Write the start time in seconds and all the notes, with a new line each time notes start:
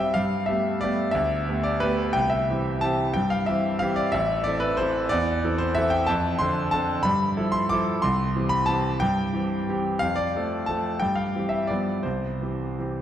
Already playing: G2 G3 C4 G4 E5 F5 G5
0.14 G2 F5
0.46 A3 B3 G4 E5
0.81 A3 B3 G4 D5
1.11 D2 E5
1.49 A3 B3 G4
1.64 D5
1.80 A3 B3 G4 B4
2.13 C2 G5
2.30 E5
2.50 E3 C4 G4
2.81 E3 C4 G4 A5
3.14 G2 G5
3.30 F5
3.46 E3 C4 G4 E5
3.79 E3 C4 G4 F5
3.96 D5
4.12 A1 E5
4.44 E3 C4 A4 D5
4.60 B4
4.77 E3 C4 A4 C5
5.09 E2 D5
5.44 E3 C4 A4
5.58 C5
5.75 E3 C4 A4 E5
5.90 G5
6.07 F2 A5
6.39 D3 C4 A4 C6
6.71 D3 C4 A4 A5
7.03 G2 B5
7.37 F3 E4 A4
7.52 C6
7.69 F3 E4 A4 D6
8.02 C2 C6
8.36 E3 C4 G4
8.49 B5
8.66 E3 C4 G4 A5
9.00 G2 G5
9.33 E3 C4 G4
9.69 E3 C4 G4
9.99 F2 F5
10.16 D5
10.36 F3 A3 A4
10.66 F3 A3 A4 A5
11.00 G2 G5
11.15 F5
11.35 E3 C4 G4
11.49 E5
11.67 G2 F3 B3 D5
11.72 G4
12.03 C2 C5
12.42 E3 C4 G4
12.79 E3 C4 G4